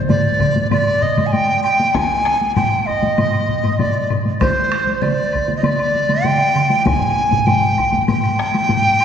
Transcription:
0.09 0.67 D5 medium
0.09 taiko low-mid loud
0.09 taiko mid loud
0.09 taiko high medium
0.09 high woodblock soft
0.40 taiko medium
0.40 taiko low-mid medium
0.40 taiko mid medium
0.40 taiko high soft
0.40 high woodblock soft
0.56 taiko high medium
0.71 1.04 D5 medium
0.71 taiko low-mid medium
0.71 taiko mid medium
0.71 taiko high medium
0.71 high woodblock medium
0.87 high woodblock soft
1.02 1.28 D#5 medium
1.02 taiko low-mid medium
1.02 taiko mid medium
1.17 taiko low-mid medium
1.17 taiko mid medium
1.17 taiko high medium
1.17 high woodblock soft
1.26 1.34 G#5 medium
1.32 1.63 G5 medium
1.32 taiko high medium
1.32 high woodblock soft
1.64 1.96 G5 medium
1.64 high woodblock medium
1.80 taiko high medium
1.94 2.55 G#5 medium
1.94 taiko rim medium
1.94 taiko medium
1.94 taiko high medium
1.94 high woodblock soft
2.25 taiko rim medium
2.41 taiko high soft
2.55 2.88 G5 medium
2.55 taiko low-mid medium
2.55 taiko high medium
2.55 high woodblock soft
2.86 3.73 D#5 medium
2.86 taiko medium
2.86 high woodblock soft
3.03 taiko low-mid medium
3.03 taiko high soft
3.18 taiko low-mid medium
3.18 taiko high medium
3.18 high woodblock medium
3.33 high woodblock soft
3.49 taiko low-mid medium
3.64 taiko low-mid medium
3.64 taiko high medium
3.64 high woodblock soft
3.73 3.80 D#5 medium
3.79 4.16 D5 medium
3.79 taiko low-mid loud
3.79 taiko high medium
3.79 high woodblock soft
4.10 taiko low-mid loud
4.10 high woodblock soft
4.25 taiko high medium
4.40 5.03 C5 medium
4.40 taiko rim medium
4.40 taiko medium
4.40 taiko high medium
4.40 high woodblock medium
4.72 taiko rim medium
4.87 taiko high soft
5.02 5.56 D5 medium
5.02 taiko mid medium
5.02 taiko high medium
5.02 high woodblock soft
5.33 taiko medium
5.33 high woodblock soft
5.48 taiko mid medium
5.48 taiko high medium
5.56 5.65 D#5 medium
5.63 6.26 D5 medium
5.63 taiko mid loud
5.63 taiko high medium
5.63 high woodblock medium
5.79 high woodblock soft
5.95 taiko mid medium
6.09 taiko mid medium
6.09 taiko high medium
6.09 high woodblock soft
6.25 6.87 G5 medium
6.25 taiko mid medium
6.25 taiko high medium
6.25 high woodblock soft
6.55 taiko mid loud
6.55 high woodblock soft
6.70 taiko high medium
6.85 7.48 G#5 medium
6.85 taiko loud
6.85 taiko high medium
6.85 high woodblock soft
7.01 taiko low-mid medium
7.31 taiko low-mid loud
7.31 taiko high soft
7.46 8.07 G5 medium
7.46 taiko low-mid loud
7.46 taiko high medium
7.46 high woodblock soft
7.78 taiko medium
7.78 high woodblock soft
7.92 taiko low-mid medium
7.92 taiko high medium
8.08 9.05 G5 medium
8.08 taiko low-mid loud
8.08 taiko high medium
8.08 high woodblock soft
8.24 high woodblock soft
8.39 taiko rim medium
8.54 taiko high medium
8.54 high woodblock soft
8.69 taiko low-mid loud
8.69 taiko high medium
8.69 high woodblock soft
9.00 high woodblock soft

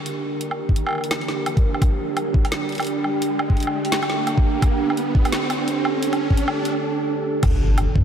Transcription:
0.00 7.39 D4 medium
0.00 7.39 G4 medium
0.00 1.81 A#4 medium
0.00 riser medium
0.06 closed hi-hat medium
0.41 closed hi-hat medium
0.51 low woodblock soft
0.69 kick medium
0.76 closed hi-hat medium
0.87 low woodblock medium
0.89 low woodblock medium
0.91 low woodblock soft
0.93 low woodblock soft
0.98 low woodblock soft
1.01 open hi-hat medium
1.01 low woodblock soft
1.11 snare loud
1.11 closed hi-hat medium
1.11 low woodblock soft
1.21 open hi-hat soft
1.28 snare medium
1.46 closed hi-hat medium
1.46 low woodblock medium
1.57 kick loud
1.57 closed hi-hat soft
1.74 low woodblock soft
1.82 4.62 G5 medium
1.82 kick loud
1.82 closed hi-hat medium
1.82 low woodblock soft
2.17 closed hi-hat medium
2.17 low woodblock medium
2.34 kick loud
2.45 open hi-hat medium
2.45 low woodblock medium
2.52 snare loud
2.52 closed hi-hat medium
2.69 open hi-hat soft
2.72 open hi-hat soft
2.75 open hi-hat soft
2.78 open hi-hat soft
2.78 low woodblock medium
2.80 open hi-hat soft
2.83 open hi-hat medium
2.85 closed hi-hat medium
2.85 open hi-hat medium
3.04 low woodblock soft
3.22 closed hi-hat medium
3.39 low woodblock medium
3.50 kick medium
3.57 closed hi-hat soft
3.60 closed hi-hat soft
3.63 closed hi-hat soft
3.67 low woodblock medium
3.85 open hi-hat medium
3.92 snare loud
3.92 closed hi-hat medium
4.03 open hi-hat soft
4.03 low woodblock medium
4.10 snare medium
4.27 closed hi-hat medium
4.27 low woodblock soft
4.38 kick loud
4.62 7.43 A4 medium
4.62 kick loud
4.62 closed hi-hat medium
4.62 low woodblock medium
4.90 low woodblock medium
4.97 closed hi-hat medium
5.15 kick loud
5.25 open hi-hat medium
5.25 low woodblock medium
5.32 snare loud
5.32 closed hi-hat medium
5.50 open hi-hat medium
5.50 low woodblock medium
5.68 closed hi-hat medium
5.85 low woodblock medium
6.03 closed hi-hat medium
6.13 closed hi-hat soft
6.13 low woodblock medium
6.30 kick medium
6.37 closed hi-hat medium
6.48 low woodblock medium
6.65 open hi-hat medium
7.43 7.87 G1 loud
7.43 8.04 D4 medium
7.43 8.04 G4 medium
7.43 8.04 G5 medium
7.43 kick loud
7.43 closed hi-hat medium
7.43 crash loud
7.43 impact medium
7.43 low woodblock medium
7.78 closed hi-hat medium
7.78 low woodblock medium
7.95 8.04 G2 loud
7.95 kick loud

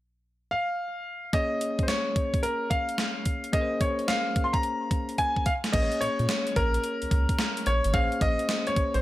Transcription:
0.51 1.29 F5 medium
1.33 3.49 A#3 medium
1.33 3.50 C#4 medium
1.33 3.50 G#4 medium
1.33 3.50 C#5 medium
1.33 1.85 D#5 medium
1.33 kick loud
1.33 closed hi-hat medium
1.61 closed hi-hat medium
1.79 kick medium
1.79 closed hi-hat soft
1.83 1.88 C5 medium
1.88 2.39 C#5 medium
1.88 snare loud
1.88 closed hi-hat medium
2.16 kick medium
2.16 closed hi-hat medium
2.34 kick medium
2.34 closed hi-hat medium
2.43 2.69 A#4 medium
2.43 closed hi-hat medium
2.70 3.56 F5 medium
2.70 kick medium
2.70 closed hi-hat medium
2.89 closed hi-hat medium
2.98 snare loud
2.98 closed hi-hat medium
3.25 kick medium
3.25 closed hi-hat medium
3.44 closed hi-hat medium
3.52 5.42 A#3 medium
3.52 5.42 C#4 medium
3.52 5.42 G#4 medium
3.52 3.63 A#4 medium
3.52 3.79 D#5 medium
3.52 kick loud
3.52 closed hi-hat medium
3.61 5.46 C5 medium
3.81 4.09 C#5 medium
3.81 kick medium
3.81 closed hi-hat medium
3.99 closed hi-hat soft
4.08 4.46 F5 medium
4.08 snare loud
4.08 closed hi-hat medium
4.36 kick medium
4.36 closed hi-hat medium
4.44 4.54 C6 medium
4.53 5.42 A#5 medium
4.53 kick medium
4.53 closed hi-hat medium
4.63 closed hi-hat medium
4.91 kick medium
4.91 closed hi-hat medium
5.09 closed hi-hat medium
5.18 5.44 G#5 loud
5.18 kick medium
5.18 closed hi-hat medium
5.36 kick medium
5.46 5.52 F5 loud
5.46 kick medium
5.46 closed hi-hat medium
5.64 snare medium
5.64 closed hi-hat medium
5.73 5.88 A#1 loud
5.73 7.89 A#3 medium
5.73 7.90 C#4 medium
5.73 7.90 G#4 medium
5.73 5.83 B4 medium
5.73 6.01 D#5 loud
5.73 kick loud
5.73 closed hi-hat medium
5.73 crash medium
5.82 7.94 C#5 medium
5.92 closed hi-hat medium
6.01 6.09 A#2 soft
6.01 6.58 C#5 medium
6.01 closed hi-hat medium
6.19 6.27 A#2 loud
6.19 closed hi-hat soft
6.29 snare loud
6.29 closed hi-hat medium
6.47 closed hi-hat soft
6.56 6.78 A#1 medium
6.56 7.70 A#4 medium
6.56 kick medium
6.56 closed hi-hat medium
6.74 closed hi-hat medium
6.84 closed hi-hat medium
7.02 7.06 C#2 soft
7.02 closed hi-hat soft
7.11 7.25 C#2 medium
7.11 kick medium
7.11 closed hi-hat medium
7.29 kick medium
7.29 closed hi-hat medium
7.39 snare loud
7.39 closed hi-hat medium
7.57 closed hi-hat medium
7.66 7.81 A#1 medium
7.66 7.95 C#5 medium
7.66 closed hi-hat medium
7.84 7.92 G#1 medium
7.84 closed hi-hat medium
7.93 8.08 A#1 loud
7.93 9.02 A#3 medium
7.93 9.02 C#4 medium
7.93 9.02 G#4 medium
7.93 9.02 C5 medium
7.93 8.22 F5 loud
7.93 kick loud
7.93 closed hi-hat medium
8.12 closed hi-hat soft
8.21 8.35 A#1 medium
8.21 8.64 D#5 loud
8.21 kick loud
8.21 closed hi-hat medium
8.39 closed hi-hat soft
8.49 snare loud
8.49 closed hi-hat medium
8.67 8.95 C#5 medium
8.67 closed hi-hat medium
8.76 8.84 A#1 soft
8.76 kick medium
8.76 closed hi-hat medium
8.94 9.02 A#1 medium
8.94 9.02 C5 medium
8.94 closed hi-hat medium

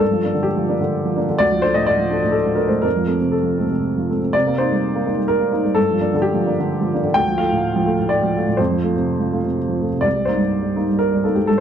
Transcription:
0.00 1.37 G2 soft
0.00 0.46 A4 medium
0.11 0.30 F3 soft
0.24 0.34 A#3 soft
0.24 0.35 D4 soft
0.34 0.72 D3 soft
0.43 1.15 G4 medium
0.56 0.76 F3 soft
0.69 0.80 A#3 soft
0.69 0.80 D4 soft
0.80 1.19 D3 soft
1.05 1.24 F3 soft
1.16 1.27 A#3 soft
1.16 1.27 D4 soft
1.29 1.41 D3 soft
1.39 2.80 D2 medium
1.39 1.63 D5 loud
1.52 1.71 F3 medium
1.62 1.74 A3 soft
1.62 1.75 D4 soft
1.62 1.75 C5 medium
1.74 2.14 A2 soft
1.74 1.87 D#5 medium
1.87 2.35 D5 medium
1.99 2.18 F3 medium
2.10 2.22 A3 soft
2.10 2.22 D4 medium
2.23 2.62 A2 soft
2.32 2.58 A4 medium
2.46 2.66 F3 soft
2.55 2.69 A3 soft
2.55 2.69 D4 soft
2.55 2.70 A#4 medium
2.68 2.83 A2 soft
2.68 2.83 C5 medium
2.82 4.29 F2 soft
2.82 3.33 A#4 medium
2.96 3.17 F3 soft
3.06 3.19 A3 soft
3.06 3.19 C4 soft
3.21 3.61 C3 soft
3.32 4.08 A4 medium
3.43 3.65 F3 soft
3.58 3.70 A3 soft
3.58 3.70 C4 soft
3.70 4.11 C3 soft
3.97 4.17 F3 soft
4.09 4.21 A3 soft
4.09 4.21 C4 soft
4.22 4.34 C3 soft
4.33 5.73 C3 medium
4.33 4.58 D5 medium
4.47 4.57 A#3 soft
4.58 4.69 A#3 soft
4.58 4.70 D#4 soft
4.58 5.30 C5 medium
4.72 5.09 G3 soft
4.95 5.04 A#3 soft
5.06 5.17 A#3 soft
5.06 5.17 D#4 soft
5.17 5.55 G3 soft
5.28 5.76 A#4 medium
5.40 5.51 A#3 soft
5.52 5.63 A#3 soft
5.52 5.64 D#4 soft
5.65 5.77 G3 soft
5.75 7.12 G2 medium
5.75 6.15 A4 medium
5.90 6.08 F3 soft
6.00 6.10 A#3 soft
6.00 6.11 D4 soft
6.13 6.49 D3 soft
6.13 6.23 A4 medium
6.22 6.92 G4 medium
6.34 6.53 F3 medium
6.46 6.57 A#3 soft
6.46 6.56 D4 medium
6.59 6.96 D3 soft
6.81 7.00 F3 soft
6.94 7.04 A#3 soft
6.94 7.04 D4 soft
7.04 7.16 D3 soft
7.14 8.54 D2 medium
7.14 7.39 G5 loud
7.28 7.46 F3 medium
7.38 7.49 A3 soft
7.38 7.50 F4 medium
7.38 8.10 F5 medium
7.52 7.89 A2 medium
7.76 7.94 F3 medium
7.86 7.97 A3 soft
7.86 7.97 F4 medium
8.00 8.37 A2 medium
8.09 8.58 D5 medium
8.23 8.42 F3 soft
8.37 8.47 A3 soft
8.37 8.46 F4 soft
8.48 8.59 A2 soft
8.57 10.02 F2 medium
8.57 9.56 C5 medium
8.71 8.90 F3 soft
8.83 8.94 A3 soft
8.83 8.94 F4 soft
8.97 9.36 C3 soft
9.19 9.39 F3 soft
9.32 9.43 A3 soft
9.32 9.44 F4 soft
9.44 9.83 C3 soft
9.68 9.88 F3 soft
9.81 9.92 A3 soft
9.81 9.92 F4 soft
9.92 10.05 C3 soft
10.01 11.43 C2 soft
10.01 10.27 D5 medium
10.16 10.36 G3 soft
10.25 10.39 A#3 soft
10.25 10.39 D#4 soft
10.25 10.98 C5 medium
10.37 10.77 G2 soft
10.62 10.82 G3 soft
10.76 10.87 A#3 soft
10.76 10.87 D#4 soft
10.90 11.27 G2 soft
10.99 11.23 A#4 medium
11.13 11.32 G3 soft
11.24 11.35 A#3 soft
11.24 11.35 D#4 soft
11.24 11.36 A4 medium
11.35 11.48 G2 soft
11.35 11.47 G4 soft
11.47 11.60 G2 medium
11.47 11.59 A4 medium

